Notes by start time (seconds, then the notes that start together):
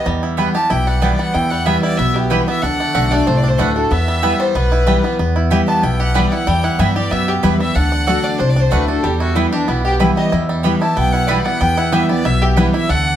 Already playing: B3 E4 G4
0.06 E2 G3
0.23 E4
0.37 E3 G3 B3 E4 B4 G5
0.55 B3 E4 G4 A5
0.70 B1 B2 E4 G5
0.87 G3 F#5
1.01 E3 G3 B3 E4 B4 D5 G5
1.19 G3 F#5
1.34 E2 E4 G5
1.50 G3 F#5
1.66 E3 G3 B3 E4 B4 E5 G5
1.82 E4 D5
1.98 B1 B2 B3 E5
2.14 E4 G4
2.30 E3 G3 B3 E4 G4 B4 G5
2.47 B3 E4 E5
2.62 D2 D3 D4 F#5
2.80 A3
2.94 B1 D3 A3 D4 F#4 D5 F#5
3.11 A3 D4 F#4 D5
3.27 C2 A2 D4 C5
3.37 D5
3.44 D4
3.48 C5
3.58 D2 D3 A3 D4 F#4 B4 D5 F#5
3.75 D4 F#4 A4
3.90 E2 B3 E5
4.08 G3
4.22 E3 G3 B3 E4 B4 G5
4.39 G3 C5
4.55 B1 B2 B3 B4
4.72 E4
4.86 E3 G3 B3 E4 B4 G5
5.04 B3 E4
5.19 E2 B3
5.36 E4
5.51 E3 G3 B3 E4 G4 B4 G5
5.68 B3 A5
5.83 B1 B2 E4 G5
6.00 G4 F#5
6.14 E3 G3 B3 E4 B4 D5 G5
6.32 B3 E4 F#5
6.47 E2 G3 G5
6.64 E4 F#5
6.79 G2 E3 G3 B3 E4 B4 E5 G5
6.96 B3 E4 G4 D5
7.11 F#2 B2 B3 E5
7.28 G4
7.43 E2 E3 G3 B3 E4 B4 G5
7.60 G3 B3 E4 E5
7.75 D2 D3 D4 F#5
7.92 D4
8.07 D3 A3 D4 F#4 D5 F#5
8.24 D4 D5
8.39 C2 A2 D4 C5
8.50 D5
8.56 D4 C5
8.62 C5
8.71 D2 D3 A3 D4 F#4 B4 D5 F#5
8.88 D4 F#4 A4
9.03 E2 G3 G4
9.20 E4 F#4
9.35 E3 G3 B3 E4 B4 G5
9.52 B3 D4 E4 G4
9.68 B1 B2 B3 E4
9.84 G4
9.99 E3 G3 B3 E4 B4 G5
10.17 G3 D#5
10.32 E2 E4
10.49 G3
10.63 E3 G3 B3 E4 G4 B4 G5
10.81 B3 E4 A5
10.95 B1 B2 B3 G5
11.12 E4 F#5
11.28 E3 G3 B3 E4 B4 D5 G5
11.45 B3 E4 F#5
11.60 E2 B3 G5
11.77 E4 F#5
11.92 E3 G3 B3 E4 G4 B4 E5 G5
12.09 B3 E4 D5
12.25 B1 B2 E4 E5
12.42 G4
12.56 E3 G3 B3 E4 B4 G5
12.74 B3 E4 E5
12.89 D2 D3 D4 F#5